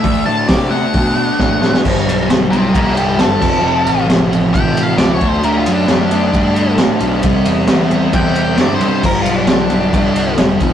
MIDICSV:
0, 0, Header, 1, 5, 480
1, 0, Start_track
1, 0, Key_signature, 1, "major"
1, 0, Tempo, 449438
1, 38, Time_signature, 4, 2, 24, 8
1, 11460, End_track
2, 0, Start_track
2, 0, Title_t, "Lead electric guitar"
2, 0, Program_c, 0, 29
2, 0, Note_on_c, 0, 76, 98
2, 265, Note_off_c, 0, 76, 0
2, 275, Note_on_c, 0, 81, 101
2, 510, Note_off_c, 0, 81, 0
2, 511, Note_on_c, 0, 74, 91
2, 743, Note_on_c, 0, 78, 87
2, 748, Note_off_c, 0, 74, 0
2, 1916, Note_off_c, 0, 78, 0
2, 2681, Note_on_c, 0, 67, 80
2, 2684, Note_on_c, 0, 76, 77
2, 2913, Note_off_c, 0, 76, 0
2, 2921, Note_off_c, 0, 67, 0
2, 2932, Note_on_c, 0, 65, 85
2, 2943, Note_on_c, 0, 74, 92
2, 3151, Note_off_c, 0, 65, 0
2, 3162, Note_off_c, 0, 74, 0
2, 3172, Note_on_c, 0, 62, 73
2, 3184, Note_on_c, 0, 71, 81
2, 3390, Note_off_c, 0, 62, 0
2, 3405, Note_off_c, 0, 71, 0
2, 3417, Note_on_c, 0, 69, 92
2, 4340, Note_off_c, 0, 69, 0
2, 4849, Note_on_c, 0, 79, 108
2, 5155, Note_off_c, 0, 79, 0
2, 5158, Note_on_c, 0, 77, 101
2, 5312, Note_off_c, 0, 77, 0
2, 5316, Note_on_c, 0, 74, 83
2, 5473, Note_off_c, 0, 74, 0
2, 5490, Note_on_c, 0, 73, 85
2, 5637, Note_off_c, 0, 73, 0
2, 5637, Note_on_c, 0, 72, 89
2, 5814, Note_off_c, 0, 72, 0
2, 5814, Note_on_c, 0, 70, 84
2, 5959, Note_on_c, 0, 65, 83
2, 5962, Note_off_c, 0, 70, 0
2, 6110, Note_on_c, 0, 62, 80
2, 6114, Note_off_c, 0, 65, 0
2, 6246, Note_off_c, 0, 62, 0
2, 6258, Note_on_c, 0, 62, 108
2, 7199, Note_off_c, 0, 62, 0
2, 8701, Note_on_c, 0, 79, 117
2, 8996, Note_off_c, 0, 79, 0
2, 9009, Note_on_c, 0, 79, 88
2, 9159, Note_off_c, 0, 79, 0
2, 9179, Note_on_c, 0, 74, 92
2, 9324, Note_off_c, 0, 74, 0
2, 9340, Note_on_c, 0, 72, 89
2, 9476, Note_off_c, 0, 72, 0
2, 9489, Note_on_c, 0, 72, 89
2, 9668, Note_off_c, 0, 72, 0
2, 9668, Note_on_c, 0, 70, 90
2, 9809, Note_off_c, 0, 70, 0
2, 9846, Note_on_c, 0, 65, 88
2, 9996, Note_off_c, 0, 65, 0
2, 9996, Note_on_c, 0, 62, 93
2, 10118, Note_off_c, 0, 62, 0
2, 10131, Note_on_c, 0, 62, 105
2, 11056, Note_off_c, 0, 62, 0
2, 11460, End_track
3, 0, Start_track
3, 0, Title_t, "Distorted electric guitar"
3, 0, Program_c, 1, 30
3, 31, Note_on_c, 1, 50, 99
3, 36, Note_on_c, 1, 57, 94
3, 51, Note_on_c, 1, 62, 110
3, 262, Note_off_c, 1, 50, 0
3, 275, Note_on_c, 1, 50, 91
3, 279, Note_off_c, 1, 57, 0
3, 292, Note_on_c, 1, 57, 100
3, 293, Note_off_c, 1, 62, 0
3, 305, Note_on_c, 1, 62, 104
3, 508, Note_off_c, 1, 50, 0
3, 516, Note_off_c, 1, 57, 0
3, 520, Note_off_c, 1, 62, 0
3, 521, Note_on_c, 1, 50, 93
3, 529, Note_on_c, 1, 57, 86
3, 533, Note_on_c, 1, 62, 86
3, 748, Note_off_c, 1, 50, 0
3, 755, Note_off_c, 1, 57, 0
3, 761, Note_on_c, 1, 50, 84
3, 767, Note_off_c, 1, 62, 0
3, 767, Note_on_c, 1, 57, 87
3, 780, Note_on_c, 1, 62, 99
3, 989, Note_off_c, 1, 50, 0
3, 1001, Note_off_c, 1, 57, 0
3, 1002, Note_on_c, 1, 50, 90
3, 1004, Note_off_c, 1, 62, 0
3, 1014, Note_on_c, 1, 57, 104
3, 1017, Note_on_c, 1, 62, 106
3, 1221, Note_off_c, 1, 50, 0
3, 1223, Note_off_c, 1, 57, 0
3, 1234, Note_on_c, 1, 50, 94
3, 1235, Note_off_c, 1, 62, 0
3, 1235, Note_on_c, 1, 57, 92
3, 1247, Note_on_c, 1, 62, 98
3, 1461, Note_off_c, 1, 50, 0
3, 1470, Note_off_c, 1, 57, 0
3, 1474, Note_on_c, 1, 50, 91
3, 1483, Note_on_c, 1, 57, 98
3, 1484, Note_off_c, 1, 62, 0
3, 1497, Note_on_c, 1, 62, 106
3, 1703, Note_off_c, 1, 50, 0
3, 1716, Note_on_c, 1, 50, 88
3, 1721, Note_off_c, 1, 57, 0
3, 1721, Note_off_c, 1, 62, 0
3, 1734, Note_on_c, 1, 57, 84
3, 1734, Note_on_c, 1, 62, 106
3, 1944, Note_off_c, 1, 50, 0
3, 1952, Note_on_c, 1, 43, 91
3, 1953, Note_off_c, 1, 57, 0
3, 1953, Note_off_c, 1, 62, 0
3, 1960, Note_on_c, 1, 50, 116
3, 1975, Note_on_c, 1, 55, 104
3, 2424, Note_off_c, 1, 43, 0
3, 2436, Note_on_c, 1, 43, 95
3, 2437, Note_off_c, 1, 50, 0
3, 2440, Note_off_c, 1, 55, 0
3, 2450, Note_on_c, 1, 50, 88
3, 2453, Note_on_c, 1, 55, 100
3, 2654, Note_off_c, 1, 43, 0
3, 2662, Note_off_c, 1, 50, 0
3, 2666, Note_on_c, 1, 43, 75
3, 2675, Note_on_c, 1, 50, 85
3, 2676, Note_off_c, 1, 55, 0
3, 2689, Note_on_c, 1, 55, 92
3, 2901, Note_off_c, 1, 43, 0
3, 2911, Note_off_c, 1, 50, 0
3, 2914, Note_on_c, 1, 43, 89
3, 2921, Note_off_c, 1, 55, 0
3, 2923, Note_on_c, 1, 50, 100
3, 2934, Note_on_c, 1, 55, 116
3, 3372, Note_off_c, 1, 43, 0
3, 3381, Note_off_c, 1, 50, 0
3, 3385, Note_on_c, 1, 43, 107
3, 3389, Note_off_c, 1, 55, 0
3, 3394, Note_on_c, 1, 50, 106
3, 3402, Note_on_c, 1, 55, 107
3, 3618, Note_off_c, 1, 43, 0
3, 3623, Note_off_c, 1, 50, 0
3, 3626, Note_on_c, 1, 41, 102
3, 3627, Note_off_c, 1, 55, 0
3, 3634, Note_on_c, 1, 48, 101
3, 3645, Note_on_c, 1, 53, 114
3, 3839, Note_off_c, 1, 41, 0
3, 3852, Note_on_c, 1, 41, 91
3, 3855, Note_off_c, 1, 48, 0
3, 3867, Note_off_c, 1, 53, 0
3, 3867, Note_on_c, 1, 48, 96
3, 3880, Note_on_c, 1, 53, 106
3, 4319, Note_off_c, 1, 41, 0
3, 4332, Note_on_c, 1, 41, 81
3, 4334, Note_off_c, 1, 48, 0
3, 4337, Note_off_c, 1, 53, 0
3, 4347, Note_on_c, 1, 48, 95
3, 4349, Note_on_c, 1, 53, 99
3, 4578, Note_off_c, 1, 41, 0
3, 4587, Note_off_c, 1, 48, 0
3, 4589, Note_off_c, 1, 53, 0
3, 4591, Note_on_c, 1, 41, 92
3, 4600, Note_on_c, 1, 48, 88
3, 4601, Note_on_c, 1, 53, 102
3, 4817, Note_off_c, 1, 41, 0
3, 4828, Note_off_c, 1, 48, 0
3, 4829, Note_on_c, 1, 41, 88
3, 4834, Note_off_c, 1, 53, 0
3, 4841, Note_on_c, 1, 48, 106
3, 4847, Note_on_c, 1, 53, 109
3, 5302, Note_off_c, 1, 41, 0
3, 5315, Note_on_c, 1, 41, 102
3, 5316, Note_off_c, 1, 48, 0
3, 5323, Note_off_c, 1, 53, 0
3, 5329, Note_on_c, 1, 48, 102
3, 5335, Note_on_c, 1, 53, 105
3, 5543, Note_off_c, 1, 41, 0
3, 5550, Note_off_c, 1, 48, 0
3, 5553, Note_off_c, 1, 53, 0
3, 5562, Note_on_c, 1, 50, 99
3, 5576, Note_on_c, 1, 57, 100
3, 5579, Note_on_c, 1, 62, 117
3, 5783, Note_off_c, 1, 50, 0
3, 5796, Note_on_c, 1, 50, 97
3, 5804, Note_off_c, 1, 57, 0
3, 5808, Note_off_c, 1, 62, 0
3, 5817, Note_on_c, 1, 57, 109
3, 5821, Note_on_c, 1, 62, 103
3, 6266, Note_off_c, 1, 50, 0
3, 6279, Note_off_c, 1, 57, 0
3, 6279, Note_on_c, 1, 50, 92
3, 6290, Note_off_c, 1, 62, 0
3, 6292, Note_on_c, 1, 57, 87
3, 6303, Note_on_c, 1, 62, 92
3, 6498, Note_off_c, 1, 50, 0
3, 6511, Note_off_c, 1, 57, 0
3, 6511, Note_on_c, 1, 50, 83
3, 6521, Note_off_c, 1, 62, 0
3, 6524, Note_on_c, 1, 57, 87
3, 6534, Note_on_c, 1, 62, 104
3, 6722, Note_off_c, 1, 50, 0
3, 6735, Note_on_c, 1, 50, 102
3, 6737, Note_off_c, 1, 57, 0
3, 6743, Note_off_c, 1, 62, 0
3, 6750, Note_on_c, 1, 57, 103
3, 6756, Note_on_c, 1, 62, 104
3, 7208, Note_off_c, 1, 50, 0
3, 7221, Note_on_c, 1, 50, 94
3, 7225, Note_off_c, 1, 62, 0
3, 7228, Note_off_c, 1, 57, 0
3, 7237, Note_on_c, 1, 62, 107
3, 7241, Note_on_c, 1, 57, 106
3, 7454, Note_off_c, 1, 50, 0
3, 7466, Note_off_c, 1, 57, 0
3, 7467, Note_on_c, 1, 50, 86
3, 7472, Note_off_c, 1, 62, 0
3, 7478, Note_on_c, 1, 57, 96
3, 7484, Note_on_c, 1, 62, 102
3, 7695, Note_off_c, 1, 50, 0
3, 7699, Note_on_c, 1, 48, 92
3, 7704, Note_off_c, 1, 57, 0
3, 7707, Note_off_c, 1, 62, 0
3, 7714, Note_on_c, 1, 55, 104
3, 7719, Note_on_c, 1, 60, 124
3, 8187, Note_off_c, 1, 48, 0
3, 8199, Note_on_c, 1, 48, 79
3, 8200, Note_off_c, 1, 55, 0
3, 8204, Note_off_c, 1, 60, 0
3, 8204, Note_on_c, 1, 55, 89
3, 8217, Note_on_c, 1, 60, 104
3, 8417, Note_off_c, 1, 48, 0
3, 8430, Note_on_c, 1, 48, 82
3, 8437, Note_off_c, 1, 55, 0
3, 8443, Note_off_c, 1, 60, 0
3, 8450, Note_on_c, 1, 55, 97
3, 8456, Note_on_c, 1, 60, 98
3, 8680, Note_off_c, 1, 48, 0
3, 8684, Note_off_c, 1, 55, 0
3, 8693, Note_on_c, 1, 48, 92
3, 8697, Note_on_c, 1, 55, 93
3, 8699, Note_off_c, 1, 60, 0
3, 8712, Note_on_c, 1, 60, 105
3, 9151, Note_off_c, 1, 48, 0
3, 9164, Note_on_c, 1, 48, 92
3, 9169, Note_off_c, 1, 55, 0
3, 9170, Note_off_c, 1, 60, 0
3, 9182, Note_on_c, 1, 55, 99
3, 9183, Note_on_c, 1, 60, 116
3, 9375, Note_off_c, 1, 48, 0
3, 9388, Note_on_c, 1, 48, 93
3, 9391, Note_off_c, 1, 55, 0
3, 9402, Note_off_c, 1, 60, 0
3, 9404, Note_on_c, 1, 55, 93
3, 9415, Note_on_c, 1, 60, 97
3, 9618, Note_off_c, 1, 48, 0
3, 9626, Note_off_c, 1, 55, 0
3, 9632, Note_off_c, 1, 60, 0
3, 9646, Note_on_c, 1, 43, 92
3, 9656, Note_on_c, 1, 50, 93
3, 9666, Note_on_c, 1, 55, 102
3, 10113, Note_off_c, 1, 43, 0
3, 10123, Note_off_c, 1, 50, 0
3, 10126, Note_on_c, 1, 43, 94
3, 10128, Note_off_c, 1, 55, 0
3, 10136, Note_on_c, 1, 50, 92
3, 10140, Note_on_c, 1, 55, 98
3, 10346, Note_off_c, 1, 43, 0
3, 10355, Note_off_c, 1, 50, 0
3, 10358, Note_on_c, 1, 43, 82
3, 10368, Note_on_c, 1, 50, 95
3, 10369, Note_off_c, 1, 55, 0
3, 10382, Note_on_c, 1, 55, 80
3, 10579, Note_off_c, 1, 43, 0
3, 10588, Note_off_c, 1, 50, 0
3, 10591, Note_on_c, 1, 43, 86
3, 10597, Note_off_c, 1, 55, 0
3, 10601, Note_on_c, 1, 50, 99
3, 10610, Note_on_c, 1, 55, 105
3, 11071, Note_off_c, 1, 43, 0
3, 11075, Note_off_c, 1, 50, 0
3, 11084, Note_on_c, 1, 43, 92
3, 11087, Note_off_c, 1, 55, 0
3, 11088, Note_on_c, 1, 50, 97
3, 11100, Note_on_c, 1, 55, 105
3, 11307, Note_off_c, 1, 43, 0
3, 11309, Note_off_c, 1, 50, 0
3, 11315, Note_off_c, 1, 55, 0
3, 11329, Note_on_c, 1, 41, 104
3, 11334, Note_on_c, 1, 48, 117
3, 11341, Note_on_c, 1, 53, 117
3, 11460, Note_off_c, 1, 41, 0
3, 11460, Note_off_c, 1, 48, 0
3, 11460, Note_off_c, 1, 53, 0
3, 11460, End_track
4, 0, Start_track
4, 0, Title_t, "Picked electric bass"
4, 0, Program_c, 2, 34
4, 44, Note_on_c, 2, 38, 89
4, 226, Note_off_c, 2, 38, 0
4, 284, Note_on_c, 2, 45, 95
4, 467, Note_off_c, 2, 45, 0
4, 530, Note_on_c, 2, 48, 91
4, 895, Note_off_c, 2, 48, 0
4, 1011, Note_on_c, 2, 47, 86
4, 1376, Note_off_c, 2, 47, 0
4, 1492, Note_on_c, 2, 45, 101
4, 1857, Note_off_c, 2, 45, 0
4, 1979, Note_on_c, 2, 31, 99
4, 2200, Note_off_c, 2, 31, 0
4, 2213, Note_on_c, 2, 35, 99
4, 2436, Note_off_c, 2, 35, 0
4, 2457, Note_on_c, 2, 35, 84
4, 2907, Note_off_c, 2, 35, 0
4, 2937, Note_on_c, 2, 36, 88
4, 3388, Note_off_c, 2, 36, 0
4, 3406, Note_on_c, 2, 30, 101
4, 3633, Note_off_c, 2, 30, 0
4, 3650, Note_on_c, 2, 29, 96
4, 3874, Note_off_c, 2, 29, 0
4, 3881, Note_on_c, 2, 29, 94
4, 4110, Note_off_c, 2, 29, 0
4, 4129, Note_on_c, 2, 33, 92
4, 4354, Note_off_c, 2, 33, 0
4, 4363, Note_on_c, 2, 33, 93
4, 4820, Note_off_c, 2, 33, 0
4, 4855, Note_on_c, 2, 33, 77
4, 5306, Note_off_c, 2, 33, 0
4, 5329, Note_on_c, 2, 37, 102
4, 5567, Note_off_c, 2, 37, 0
4, 5567, Note_on_c, 2, 38, 100
4, 5792, Note_off_c, 2, 38, 0
4, 5820, Note_on_c, 2, 38, 90
4, 6040, Note_off_c, 2, 38, 0
4, 6053, Note_on_c, 2, 42, 93
4, 6275, Note_off_c, 2, 42, 0
4, 6281, Note_on_c, 2, 42, 95
4, 6738, Note_off_c, 2, 42, 0
4, 6770, Note_on_c, 2, 43, 85
4, 7222, Note_off_c, 2, 43, 0
4, 7251, Note_on_c, 2, 45, 99
4, 7474, Note_off_c, 2, 45, 0
4, 7485, Note_on_c, 2, 35, 107
4, 7711, Note_off_c, 2, 35, 0
4, 7730, Note_on_c, 2, 36, 82
4, 7953, Note_off_c, 2, 36, 0
4, 7969, Note_on_c, 2, 40, 95
4, 8193, Note_off_c, 2, 40, 0
4, 8206, Note_on_c, 2, 40, 94
4, 8660, Note_off_c, 2, 40, 0
4, 8691, Note_on_c, 2, 40, 90
4, 9143, Note_off_c, 2, 40, 0
4, 9171, Note_on_c, 2, 43, 95
4, 9394, Note_off_c, 2, 43, 0
4, 9405, Note_on_c, 2, 43, 91
4, 9630, Note_off_c, 2, 43, 0
4, 9652, Note_on_c, 2, 31, 88
4, 9870, Note_off_c, 2, 31, 0
4, 9877, Note_on_c, 2, 35, 93
4, 10106, Note_off_c, 2, 35, 0
4, 10117, Note_on_c, 2, 35, 89
4, 10575, Note_off_c, 2, 35, 0
4, 10607, Note_on_c, 2, 36, 92
4, 11061, Note_off_c, 2, 36, 0
4, 11089, Note_on_c, 2, 28, 100
4, 11313, Note_off_c, 2, 28, 0
4, 11329, Note_on_c, 2, 29, 101
4, 11460, Note_off_c, 2, 29, 0
4, 11460, End_track
5, 0, Start_track
5, 0, Title_t, "Drums"
5, 43, Note_on_c, 9, 36, 123
5, 43, Note_on_c, 9, 46, 60
5, 149, Note_off_c, 9, 46, 0
5, 150, Note_off_c, 9, 36, 0
5, 520, Note_on_c, 9, 38, 110
5, 521, Note_on_c, 9, 46, 67
5, 526, Note_on_c, 9, 36, 121
5, 626, Note_off_c, 9, 38, 0
5, 628, Note_off_c, 9, 46, 0
5, 632, Note_off_c, 9, 36, 0
5, 1001, Note_on_c, 9, 46, 69
5, 1006, Note_on_c, 9, 36, 121
5, 1108, Note_off_c, 9, 46, 0
5, 1113, Note_off_c, 9, 36, 0
5, 1489, Note_on_c, 9, 38, 69
5, 1492, Note_on_c, 9, 36, 115
5, 1596, Note_off_c, 9, 38, 0
5, 1598, Note_off_c, 9, 36, 0
5, 1731, Note_on_c, 9, 38, 85
5, 1838, Note_off_c, 9, 38, 0
5, 1857, Note_on_c, 9, 38, 94
5, 1964, Note_off_c, 9, 38, 0
5, 1976, Note_on_c, 9, 36, 105
5, 1977, Note_on_c, 9, 49, 118
5, 2082, Note_off_c, 9, 36, 0
5, 2084, Note_off_c, 9, 49, 0
5, 2232, Note_on_c, 9, 51, 95
5, 2339, Note_off_c, 9, 51, 0
5, 2459, Note_on_c, 9, 38, 120
5, 2460, Note_on_c, 9, 51, 109
5, 2565, Note_off_c, 9, 38, 0
5, 2567, Note_off_c, 9, 51, 0
5, 2701, Note_on_c, 9, 51, 72
5, 2808, Note_off_c, 9, 51, 0
5, 2933, Note_on_c, 9, 36, 116
5, 2938, Note_on_c, 9, 51, 127
5, 3040, Note_off_c, 9, 36, 0
5, 3045, Note_off_c, 9, 51, 0
5, 3172, Note_on_c, 9, 51, 79
5, 3279, Note_off_c, 9, 51, 0
5, 3408, Note_on_c, 9, 38, 104
5, 3409, Note_on_c, 9, 51, 113
5, 3515, Note_off_c, 9, 38, 0
5, 3516, Note_off_c, 9, 51, 0
5, 3650, Note_on_c, 9, 36, 101
5, 3653, Note_on_c, 9, 57, 101
5, 3757, Note_off_c, 9, 36, 0
5, 3759, Note_off_c, 9, 57, 0
5, 4127, Note_on_c, 9, 51, 86
5, 4234, Note_off_c, 9, 51, 0
5, 4377, Note_on_c, 9, 38, 123
5, 4378, Note_on_c, 9, 51, 106
5, 4484, Note_off_c, 9, 38, 0
5, 4485, Note_off_c, 9, 51, 0
5, 4623, Note_on_c, 9, 51, 75
5, 4729, Note_off_c, 9, 51, 0
5, 4850, Note_on_c, 9, 36, 127
5, 4859, Note_on_c, 9, 51, 110
5, 4957, Note_off_c, 9, 36, 0
5, 4966, Note_off_c, 9, 51, 0
5, 5095, Note_on_c, 9, 51, 83
5, 5202, Note_off_c, 9, 51, 0
5, 5323, Note_on_c, 9, 38, 122
5, 5324, Note_on_c, 9, 51, 110
5, 5430, Note_off_c, 9, 38, 0
5, 5431, Note_off_c, 9, 51, 0
5, 5563, Note_on_c, 9, 36, 100
5, 5565, Note_on_c, 9, 51, 72
5, 5670, Note_off_c, 9, 36, 0
5, 5672, Note_off_c, 9, 51, 0
5, 5802, Note_on_c, 9, 51, 107
5, 5909, Note_off_c, 9, 51, 0
5, 6046, Note_on_c, 9, 51, 90
5, 6153, Note_off_c, 9, 51, 0
5, 6284, Note_on_c, 9, 38, 119
5, 6285, Note_on_c, 9, 51, 115
5, 6390, Note_off_c, 9, 38, 0
5, 6392, Note_off_c, 9, 51, 0
5, 6526, Note_on_c, 9, 51, 81
5, 6633, Note_off_c, 9, 51, 0
5, 6766, Note_on_c, 9, 36, 126
5, 6770, Note_on_c, 9, 51, 115
5, 6873, Note_off_c, 9, 36, 0
5, 6877, Note_off_c, 9, 51, 0
5, 7007, Note_on_c, 9, 51, 80
5, 7114, Note_off_c, 9, 51, 0
5, 7242, Note_on_c, 9, 38, 124
5, 7243, Note_on_c, 9, 51, 110
5, 7349, Note_off_c, 9, 38, 0
5, 7350, Note_off_c, 9, 51, 0
5, 7480, Note_on_c, 9, 51, 80
5, 7587, Note_off_c, 9, 51, 0
5, 7719, Note_on_c, 9, 51, 120
5, 7725, Note_on_c, 9, 36, 121
5, 7826, Note_off_c, 9, 51, 0
5, 7832, Note_off_c, 9, 36, 0
5, 7961, Note_on_c, 9, 51, 85
5, 8068, Note_off_c, 9, 51, 0
5, 8198, Note_on_c, 9, 38, 124
5, 8199, Note_on_c, 9, 51, 115
5, 8304, Note_off_c, 9, 38, 0
5, 8305, Note_off_c, 9, 51, 0
5, 8447, Note_on_c, 9, 51, 73
5, 8554, Note_off_c, 9, 51, 0
5, 8684, Note_on_c, 9, 51, 114
5, 8686, Note_on_c, 9, 36, 114
5, 8791, Note_off_c, 9, 51, 0
5, 8792, Note_off_c, 9, 36, 0
5, 8924, Note_on_c, 9, 51, 85
5, 9031, Note_off_c, 9, 51, 0
5, 9160, Note_on_c, 9, 38, 106
5, 9161, Note_on_c, 9, 51, 111
5, 9267, Note_off_c, 9, 38, 0
5, 9268, Note_off_c, 9, 51, 0
5, 9404, Note_on_c, 9, 51, 72
5, 9511, Note_off_c, 9, 51, 0
5, 9647, Note_on_c, 9, 36, 109
5, 9649, Note_on_c, 9, 57, 107
5, 9754, Note_off_c, 9, 36, 0
5, 9756, Note_off_c, 9, 57, 0
5, 9886, Note_on_c, 9, 51, 95
5, 9993, Note_off_c, 9, 51, 0
5, 10117, Note_on_c, 9, 38, 127
5, 10118, Note_on_c, 9, 51, 102
5, 10224, Note_off_c, 9, 38, 0
5, 10225, Note_off_c, 9, 51, 0
5, 10358, Note_on_c, 9, 51, 66
5, 10465, Note_off_c, 9, 51, 0
5, 10605, Note_on_c, 9, 36, 126
5, 10610, Note_on_c, 9, 51, 112
5, 10712, Note_off_c, 9, 36, 0
5, 10717, Note_off_c, 9, 51, 0
5, 10848, Note_on_c, 9, 51, 90
5, 10955, Note_off_c, 9, 51, 0
5, 11084, Note_on_c, 9, 38, 122
5, 11085, Note_on_c, 9, 51, 109
5, 11191, Note_off_c, 9, 38, 0
5, 11192, Note_off_c, 9, 51, 0
5, 11324, Note_on_c, 9, 36, 103
5, 11326, Note_on_c, 9, 51, 82
5, 11431, Note_off_c, 9, 36, 0
5, 11433, Note_off_c, 9, 51, 0
5, 11460, End_track
0, 0, End_of_file